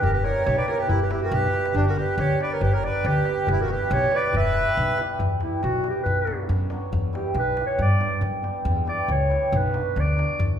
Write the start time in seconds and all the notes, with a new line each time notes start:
0.02 E1 G4 A#4, darbuka dum
0.13 G4 B4, darbuka tek
0.24 G3 B3 E4 G4 A#4 C#5, darbuka tek
0.36 darbuka tek
0.45 B1 G4 C#5, darbuka tek
0.56 B4 D5, darbuka tek
0.67 G3 B3 E4 G4 A#4 C#5, darbuka tek
0.77 G4 B4
0.88 E1 E4, darbuka dum
0.93 G4
1.00 G4 B4, darbuka tek
1.09 G3 B3 E4 G4, darbuka tek
1.21 F#4, darbuka tek
1.26 A#4
1.31 B1 G4 B4, darbuka dum
1.43 darbuka dum
1.52 G3 B3 E4 G4, darbuka tek
1.66 darbuka tek
1.74 G1 D4 G4, darbuka dum
1.86 F#4 A#4, darbuka tek
1.96 G3 B3 D4 G4 B4, darbuka tek
2.17 D2 G4 C#5, darbuka tek
2.30 darbuka tek
2.39 G3 B3 D4 G4 B4 D5, darbuka tek
2.52 A#4 C#5
2.61 G1 G4 B4, darbuka dum
2.73 A#4 C#5, darbuka tek
2.82 G3 B3 D4 G4 B4 D5, darbuka tek
2.94 darbuka tek
3.04 D2 G4 B4, darbuka tek
3.15 darbuka tek
3.25 G3 B3 D4 G4, darbuka tek
3.47 E1 G4, darbuka dum
3.51 E4
3.61 F#4 A#4
3.68 G3 B3 E4 G4 B4, darbuka tek
3.79 darbuka tek
3.90 B1 G4 C#5, darbuka tek
4.01 darbuka tek
4.11 G3 B3 E4 G4 B4, darbuka tek
4.16 D5
4.33 E1 B4 E5, darbuka dum
4.44 darbuka tek
4.54 G3 B3 E4 G4, darbuka tek
4.65 darbuka tek
4.75 B1, darbuka tek
4.86 darbuka tek
4.97 G3 B3 E4 G4, darbuka tek
5.09 darbuka tek
5.19 E2, darbuka dum
5.41 G3 B3 E4 G4, darbuka tek
5.63 B1 F#4, darbuka tek
5.74 darbuka tek
5.83 G3 B3 E4 G4, darbuka tek
5.89 G4
6.03 B1 B4, darbuka dum
6.27 F#3 B3 D4 F#4, darbuka tek
6.49 F#2, darbuka tek
6.61 darbuka tek
6.70 F#3 B3 D4 F#4, darbuka tek
6.92 E2, darbuka dum
7.13 G3 B3 E4 G4, darbuka tek
7.34 B1, darbuka tek
7.39 B4
7.48 darbuka tek
7.57 G3 B3 E4 G4, darbuka tek
7.67 C#5
7.79 G2 D5, darbuka dum
7.91 darbuka tek
7.99 G3 B3 D4 G4, darbuka tek
8.13 darbuka tek
8.21 F#2, darbuka tek
8.34 darbuka tek
8.42 G3 B3 D4 G4, darbuka tek
8.65 E2, darbuka dum
8.85 G3 B3 E4 G4 D5, darbuka tek
9.08 C#2 C#5, darbuka tek
9.21 darbuka tek
9.29 G3 B3 E4 G4, darbuka tek
9.52 B1, darbuka dum
9.57 B4
9.73 F#3 B3 D4 F#4, darbuka tek
9.96 D2 D5, darbuka tek
10.09 darbuka tek
10.16 F#3 B3 D4 F#4, darbuka tek
10.39 E2, darbuka dum